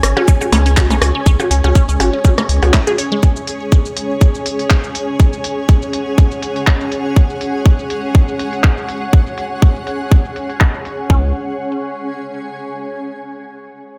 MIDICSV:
0, 0, Header, 1, 6, 480
1, 0, Start_track
1, 0, Tempo, 491803
1, 1232, Time_signature, 4, 2, 24, 8
1, 13647, End_track
2, 0, Start_track
2, 0, Title_t, "Ambient pad"
2, 0, Program_c, 0, 92
2, 0, Note_on_c, 0, 61, 81
2, 0, Note_on_c, 0, 68, 97
2, 0, Note_on_c, 0, 73, 86
2, 0, Note_on_c, 0, 80, 92
2, 4785, Note_on_c, 0, 78, 90
2, 4934, Note_off_c, 0, 80, 0
2, 10822, Note_off_c, 0, 61, 0
2, 10832, Note_off_c, 0, 68, 0
2, 10832, Note_off_c, 0, 73, 0
2, 10832, Note_off_c, 0, 78, 0
2, 10834, Note_on_c, 0, 61, 75
2, 10915, Note_on_c, 0, 68, 76
2, 10988, Note_on_c, 0, 73, 83
2, 11053, Note_on_c, 0, 80, 84
2, 12714, Note_off_c, 0, 61, 0
2, 12714, Note_off_c, 0, 73, 0
2, 12714, Note_off_c, 0, 80, 0
2, 12715, Note_off_c, 0, 68, 0
2, 13647, End_track
3, 0, Start_track
3, 0, Title_t, "Synth arpeggio sound"
3, 0, Program_c, 1, 84
3, 32, Note_on_c, 1, 61, 79
3, 82, Note_off_c, 1, 61, 0
3, 163, Note_on_c, 1, 61, 103
3, 188, Note_off_c, 1, 61, 0
3, 272, Note_on_c, 1, 61, 85
3, 323, Note_off_c, 1, 61, 0
3, 402, Note_on_c, 1, 61, 75
3, 445, Note_off_c, 1, 61, 0
3, 512, Note_on_c, 1, 61, 102
3, 542, Note_off_c, 1, 61, 0
3, 643, Note_on_c, 1, 61, 77
3, 685, Note_off_c, 1, 61, 0
3, 751, Note_on_c, 1, 61, 82
3, 802, Note_off_c, 1, 61, 0
3, 882, Note_on_c, 1, 61, 99
3, 908, Note_off_c, 1, 61, 0
3, 990, Note_on_c, 1, 61, 80
3, 1042, Note_off_c, 1, 61, 0
3, 1122, Note_on_c, 1, 61, 74
3, 1165, Note_off_c, 1, 61, 0
3, 1231, Note_on_c, 1, 61, 100
3, 1262, Note_off_c, 1, 61, 0
3, 1363, Note_on_c, 1, 61, 77
3, 1405, Note_off_c, 1, 61, 0
3, 1472, Note_on_c, 1, 61, 76
3, 1522, Note_off_c, 1, 61, 0
3, 1603, Note_on_c, 1, 61, 99
3, 1628, Note_off_c, 1, 61, 0
3, 1711, Note_on_c, 1, 61, 83
3, 1762, Note_off_c, 1, 61, 0
3, 1842, Note_on_c, 1, 61, 77
3, 1885, Note_off_c, 1, 61, 0
3, 1952, Note_on_c, 1, 61, 100
3, 1982, Note_off_c, 1, 61, 0
3, 2083, Note_on_c, 1, 61, 75
3, 2125, Note_off_c, 1, 61, 0
3, 2191, Note_on_c, 1, 61, 83
3, 2242, Note_off_c, 1, 61, 0
3, 2323, Note_on_c, 1, 61, 101
3, 2348, Note_off_c, 1, 61, 0
3, 2564, Note_on_c, 1, 59, 75
3, 2589, Note_off_c, 1, 59, 0
3, 2673, Note_on_c, 1, 64, 80
3, 2703, Note_off_c, 1, 64, 0
3, 2803, Note_on_c, 1, 68, 99
3, 2828, Note_off_c, 1, 68, 0
3, 2912, Note_on_c, 1, 73, 78
3, 2988, Note_off_c, 1, 73, 0
3, 3043, Note_on_c, 1, 56, 100
3, 3085, Note_off_c, 1, 56, 0
3, 10832, Note_on_c, 1, 61, 92
3, 11055, Note_off_c, 1, 61, 0
3, 13647, End_track
4, 0, Start_track
4, 0, Title_t, "Analog synth bass"
4, 0, Program_c, 2, 38
4, 31, Note_on_c, 2, 32, 79
4, 130, Note_off_c, 2, 32, 0
4, 512, Note_on_c, 2, 37, 88
4, 883, Note_on_c, 2, 35, 108
4, 898, Note_off_c, 2, 37, 0
4, 965, Note_off_c, 2, 35, 0
4, 992, Note_on_c, 2, 37, 94
4, 1091, Note_off_c, 2, 37, 0
4, 1232, Note_on_c, 2, 37, 94
4, 1331, Note_off_c, 2, 37, 0
4, 1472, Note_on_c, 2, 37, 104
4, 1571, Note_off_c, 2, 37, 0
4, 1603, Note_on_c, 2, 37, 81
4, 1685, Note_off_c, 2, 37, 0
4, 1842, Note_on_c, 2, 37, 95
4, 1925, Note_off_c, 2, 37, 0
4, 1951, Note_on_c, 2, 32, 77
4, 2051, Note_off_c, 2, 32, 0
4, 2432, Note_on_c, 2, 37, 94
4, 2531, Note_off_c, 2, 37, 0
4, 2563, Note_on_c, 2, 37, 90
4, 2645, Note_off_c, 2, 37, 0
4, 10832, Note_on_c, 2, 37, 95
4, 11055, Note_off_c, 2, 37, 0
4, 13647, End_track
5, 0, Start_track
5, 0, Title_t, "Percussion blips"
5, 163, Note_on_c, 9, 63, 81
5, 260, Note_off_c, 9, 63, 0
5, 404, Note_on_c, 9, 63, 46
5, 501, Note_off_c, 9, 63, 0
5, 512, Note_on_c, 9, 64, 95
5, 610, Note_off_c, 9, 64, 0
5, 752, Note_on_c, 9, 63, 81
5, 850, Note_off_c, 9, 63, 0
5, 883, Note_on_c, 9, 64, 83
5, 981, Note_off_c, 9, 64, 0
5, 992, Note_on_c, 9, 63, 46
5, 1090, Note_off_c, 9, 63, 0
5, 1363, Note_on_c, 9, 63, 78
5, 1461, Note_off_c, 9, 63, 0
5, 1603, Note_on_c, 9, 63, 45
5, 1700, Note_off_c, 9, 63, 0
5, 1952, Note_on_c, 9, 63, 80
5, 2049, Note_off_c, 9, 63, 0
5, 2192, Note_on_c, 9, 63, 44
5, 2290, Note_off_c, 9, 63, 0
5, 2323, Note_on_c, 9, 64, 75
5, 2420, Note_off_c, 9, 64, 0
5, 2563, Note_on_c, 9, 63, 80
5, 2660, Note_off_c, 9, 63, 0
5, 2672, Note_on_c, 9, 64, 76
5, 2770, Note_off_c, 9, 64, 0
5, 2803, Note_on_c, 9, 63, 46
5, 2901, Note_off_c, 9, 63, 0
5, 13647, End_track
6, 0, Start_track
6, 0, Title_t, "Drums"
6, 32, Note_on_c, 9, 37, 60
6, 32, Note_on_c, 9, 46, 95
6, 130, Note_off_c, 9, 37, 0
6, 130, Note_off_c, 9, 46, 0
6, 272, Note_on_c, 9, 36, 118
6, 272, Note_on_c, 9, 69, 64
6, 370, Note_off_c, 9, 36, 0
6, 370, Note_off_c, 9, 69, 0
6, 403, Note_on_c, 9, 69, 41
6, 501, Note_off_c, 9, 69, 0
6, 512, Note_on_c, 9, 46, 100
6, 610, Note_off_c, 9, 46, 0
6, 643, Note_on_c, 9, 46, 38
6, 741, Note_off_c, 9, 46, 0
6, 752, Note_on_c, 9, 36, 124
6, 752, Note_on_c, 9, 39, 100
6, 752, Note_on_c, 9, 69, 59
6, 850, Note_off_c, 9, 36, 0
6, 850, Note_off_c, 9, 39, 0
6, 850, Note_off_c, 9, 69, 0
6, 884, Note_on_c, 9, 69, 40
6, 981, Note_off_c, 9, 69, 0
6, 992, Note_on_c, 9, 37, 65
6, 992, Note_on_c, 9, 46, 93
6, 1090, Note_off_c, 9, 37, 0
6, 1090, Note_off_c, 9, 46, 0
6, 1232, Note_on_c, 9, 36, 121
6, 1232, Note_on_c, 9, 69, 59
6, 1330, Note_off_c, 9, 36, 0
6, 1330, Note_off_c, 9, 69, 0
6, 1363, Note_on_c, 9, 69, 40
6, 1461, Note_off_c, 9, 69, 0
6, 1472, Note_on_c, 9, 46, 93
6, 1570, Note_off_c, 9, 46, 0
6, 1712, Note_on_c, 9, 36, 118
6, 1712, Note_on_c, 9, 69, 58
6, 1810, Note_off_c, 9, 36, 0
6, 1810, Note_off_c, 9, 69, 0
6, 1844, Note_on_c, 9, 69, 38
6, 1942, Note_off_c, 9, 69, 0
6, 1953, Note_on_c, 9, 46, 94
6, 2050, Note_off_c, 9, 46, 0
6, 2192, Note_on_c, 9, 36, 117
6, 2192, Note_on_c, 9, 69, 61
6, 2289, Note_off_c, 9, 69, 0
6, 2290, Note_off_c, 9, 36, 0
6, 2323, Note_on_c, 9, 37, 59
6, 2324, Note_on_c, 9, 69, 39
6, 2420, Note_off_c, 9, 37, 0
6, 2421, Note_off_c, 9, 69, 0
6, 2432, Note_on_c, 9, 46, 94
6, 2530, Note_off_c, 9, 46, 0
6, 2563, Note_on_c, 9, 46, 36
6, 2661, Note_off_c, 9, 46, 0
6, 2672, Note_on_c, 9, 36, 124
6, 2672, Note_on_c, 9, 39, 100
6, 2672, Note_on_c, 9, 69, 57
6, 2770, Note_off_c, 9, 36, 0
6, 2770, Note_off_c, 9, 39, 0
6, 2770, Note_off_c, 9, 69, 0
6, 2803, Note_on_c, 9, 69, 38
6, 2900, Note_off_c, 9, 69, 0
6, 2912, Note_on_c, 9, 46, 94
6, 3009, Note_off_c, 9, 46, 0
6, 3151, Note_on_c, 9, 69, 57
6, 3152, Note_on_c, 9, 36, 120
6, 3249, Note_off_c, 9, 69, 0
6, 3250, Note_off_c, 9, 36, 0
6, 3282, Note_on_c, 9, 69, 40
6, 3380, Note_off_c, 9, 69, 0
6, 3391, Note_on_c, 9, 46, 87
6, 3488, Note_off_c, 9, 46, 0
6, 3631, Note_on_c, 9, 69, 59
6, 3632, Note_on_c, 9, 36, 115
6, 3729, Note_off_c, 9, 36, 0
6, 3729, Note_off_c, 9, 69, 0
6, 3762, Note_on_c, 9, 69, 39
6, 3860, Note_off_c, 9, 69, 0
6, 3871, Note_on_c, 9, 46, 95
6, 3968, Note_off_c, 9, 46, 0
6, 4110, Note_on_c, 9, 69, 62
6, 4112, Note_on_c, 9, 36, 115
6, 4208, Note_off_c, 9, 69, 0
6, 4209, Note_off_c, 9, 36, 0
6, 4242, Note_on_c, 9, 69, 39
6, 4340, Note_off_c, 9, 69, 0
6, 4351, Note_on_c, 9, 46, 93
6, 4449, Note_off_c, 9, 46, 0
6, 4483, Note_on_c, 9, 46, 35
6, 4580, Note_off_c, 9, 46, 0
6, 4591, Note_on_c, 9, 39, 99
6, 4591, Note_on_c, 9, 69, 59
6, 4592, Note_on_c, 9, 36, 115
6, 4689, Note_off_c, 9, 36, 0
6, 4689, Note_off_c, 9, 39, 0
6, 4689, Note_off_c, 9, 69, 0
6, 4722, Note_on_c, 9, 69, 39
6, 4820, Note_off_c, 9, 69, 0
6, 4831, Note_on_c, 9, 46, 89
6, 4928, Note_off_c, 9, 46, 0
6, 5071, Note_on_c, 9, 69, 61
6, 5072, Note_on_c, 9, 36, 120
6, 5169, Note_off_c, 9, 36, 0
6, 5169, Note_off_c, 9, 69, 0
6, 5202, Note_on_c, 9, 69, 43
6, 5300, Note_off_c, 9, 69, 0
6, 5311, Note_on_c, 9, 46, 85
6, 5409, Note_off_c, 9, 46, 0
6, 5551, Note_on_c, 9, 69, 63
6, 5552, Note_on_c, 9, 36, 111
6, 5649, Note_off_c, 9, 36, 0
6, 5649, Note_off_c, 9, 69, 0
6, 5683, Note_on_c, 9, 69, 42
6, 5780, Note_off_c, 9, 69, 0
6, 5791, Note_on_c, 9, 46, 87
6, 5889, Note_off_c, 9, 46, 0
6, 6031, Note_on_c, 9, 69, 65
6, 6032, Note_on_c, 9, 36, 109
6, 6129, Note_off_c, 9, 36, 0
6, 6129, Note_off_c, 9, 69, 0
6, 6163, Note_on_c, 9, 69, 43
6, 6260, Note_off_c, 9, 69, 0
6, 6271, Note_on_c, 9, 46, 87
6, 6368, Note_off_c, 9, 46, 0
6, 6403, Note_on_c, 9, 46, 33
6, 6500, Note_off_c, 9, 46, 0
6, 6512, Note_on_c, 9, 36, 115
6, 6512, Note_on_c, 9, 39, 97
6, 6512, Note_on_c, 9, 69, 61
6, 6609, Note_off_c, 9, 36, 0
6, 6609, Note_off_c, 9, 39, 0
6, 6609, Note_off_c, 9, 69, 0
6, 6643, Note_on_c, 9, 69, 41
6, 6740, Note_off_c, 9, 69, 0
6, 6751, Note_on_c, 9, 46, 87
6, 6848, Note_off_c, 9, 46, 0
6, 6991, Note_on_c, 9, 69, 63
6, 6992, Note_on_c, 9, 36, 112
6, 7089, Note_off_c, 9, 69, 0
6, 7090, Note_off_c, 9, 36, 0
6, 7123, Note_on_c, 9, 69, 42
6, 7220, Note_off_c, 9, 69, 0
6, 7231, Note_on_c, 9, 46, 87
6, 7329, Note_off_c, 9, 46, 0
6, 7472, Note_on_c, 9, 36, 112
6, 7472, Note_on_c, 9, 69, 63
6, 7569, Note_off_c, 9, 69, 0
6, 7570, Note_off_c, 9, 36, 0
6, 7603, Note_on_c, 9, 69, 45
6, 7701, Note_off_c, 9, 69, 0
6, 7712, Note_on_c, 9, 46, 87
6, 7809, Note_off_c, 9, 46, 0
6, 7952, Note_on_c, 9, 36, 111
6, 7952, Note_on_c, 9, 69, 67
6, 8050, Note_off_c, 9, 36, 0
6, 8050, Note_off_c, 9, 69, 0
6, 8084, Note_on_c, 9, 69, 42
6, 8181, Note_off_c, 9, 69, 0
6, 8193, Note_on_c, 9, 46, 89
6, 8290, Note_off_c, 9, 46, 0
6, 8324, Note_on_c, 9, 46, 34
6, 8421, Note_off_c, 9, 46, 0
6, 8432, Note_on_c, 9, 36, 111
6, 8432, Note_on_c, 9, 39, 100
6, 8432, Note_on_c, 9, 69, 63
6, 8530, Note_off_c, 9, 36, 0
6, 8530, Note_off_c, 9, 39, 0
6, 8530, Note_off_c, 9, 69, 0
6, 8563, Note_on_c, 9, 69, 43
6, 8661, Note_off_c, 9, 69, 0
6, 8672, Note_on_c, 9, 46, 86
6, 8770, Note_off_c, 9, 46, 0
6, 8912, Note_on_c, 9, 36, 116
6, 8912, Note_on_c, 9, 69, 63
6, 9010, Note_off_c, 9, 36, 0
6, 9010, Note_off_c, 9, 69, 0
6, 9044, Note_on_c, 9, 69, 45
6, 9142, Note_off_c, 9, 69, 0
6, 9152, Note_on_c, 9, 46, 84
6, 9250, Note_off_c, 9, 46, 0
6, 9392, Note_on_c, 9, 36, 115
6, 9392, Note_on_c, 9, 69, 64
6, 9490, Note_off_c, 9, 36, 0
6, 9490, Note_off_c, 9, 69, 0
6, 9524, Note_on_c, 9, 69, 44
6, 9622, Note_off_c, 9, 69, 0
6, 9632, Note_on_c, 9, 46, 85
6, 9730, Note_off_c, 9, 46, 0
6, 9872, Note_on_c, 9, 36, 117
6, 9872, Note_on_c, 9, 69, 68
6, 9970, Note_off_c, 9, 36, 0
6, 9970, Note_off_c, 9, 69, 0
6, 10004, Note_on_c, 9, 69, 43
6, 10101, Note_off_c, 9, 69, 0
6, 10112, Note_on_c, 9, 46, 89
6, 10210, Note_off_c, 9, 46, 0
6, 10243, Note_on_c, 9, 46, 35
6, 10341, Note_off_c, 9, 46, 0
6, 10352, Note_on_c, 9, 36, 115
6, 10352, Note_on_c, 9, 39, 106
6, 10352, Note_on_c, 9, 69, 65
6, 10450, Note_off_c, 9, 36, 0
6, 10450, Note_off_c, 9, 39, 0
6, 10450, Note_off_c, 9, 69, 0
6, 10483, Note_on_c, 9, 69, 43
6, 10580, Note_off_c, 9, 69, 0
6, 10591, Note_on_c, 9, 46, 87
6, 10689, Note_off_c, 9, 46, 0
6, 10832, Note_on_c, 9, 36, 109
6, 10930, Note_off_c, 9, 36, 0
6, 13647, End_track
0, 0, End_of_file